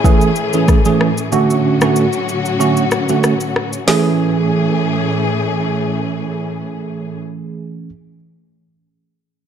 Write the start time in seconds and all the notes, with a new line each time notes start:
Already playing: A2 E3 A3 C#4 G#4
0.04 E3 A3 C#4 G#4, kick, shaker
0.21 shaker
0.36 shaker
0.53 E3 A3 C#4 G#4, shaker
0.68 kick, cross-stick, shaker
0.85 E3 A3 C#4 G#4, shaker
1.01 cross-stick
1.18 shaker
1.32 D3 F#3 A3 C#4 F#4, shaker
1.50 shaker
1.81 D3 A3 C#4 F#4, cross-stick, shaker
1.96 shaker
2.13 shaker
2.29 shaker
2.46 shaker
2.60 D3 A3 C#4 F#4, shaker
2.77 shaker
2.91 cross-stick, shaker
3.09 D3 A3 C#4 F#4, shaker
3.24 cross-stick, shaker
3.40 shaker
3.56 cross-stick
3.73 shaker
3.87 A2 E3 A3 C#4 G#4, snare, open hi-hat